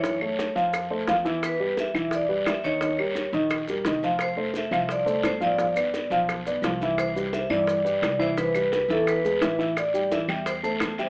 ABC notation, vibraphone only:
X:1
M:4/4
L:1/8
Q:1/4=173
K:C
V:1 name="Vibraphone"
_d3 z4 z | B2 e2 d2 e _d- | _d3 z4 z | c2 e2 d2 c d- |
d3 z4 z | c2 e d4 c | B3 A B3 z | d2 e2 c c2 e |]